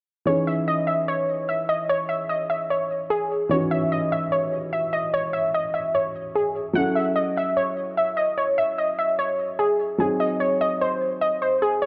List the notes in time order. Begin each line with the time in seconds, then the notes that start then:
0.25 E3 C#4 D#4 G#4 C#5
0.47 E5
0.68 D#5
0.87 E5
1.08 C#5
1.49 E5
1.69 D#5
1.89 C#5
2.09 E5
2.29 D#5
2.50 E5
2.70 C#5
3.10 G#4
3.49 E3 C#4 D#4 F#4 C#5
3.71 E5
3.92 D#5
4.12 E5
4.32 C#5
4.73 E5
4.93 D#5
5.14 C#5
5.33 E5
5.54 D#5
5.74 E5
5.95 C#5
6.35 G#4
6.73 F#3 C#4 E4 A4 F#5
6.95 E5
7.16 D#5
7.37 E5
7.57 C#5
7.97 E5
8.17 D#5
8.38 C#5
8.58 E5
8.78 D#5
8.99 E5
9.19 C#5
9.59 G#4
9.98 F#3 C4 D#4 G#4
10.20 D#5
10.40 C#5
10.61 D#5
10.81 C5
11.21 D#5
11.42 C5
11.62 G#4
11.82 C#5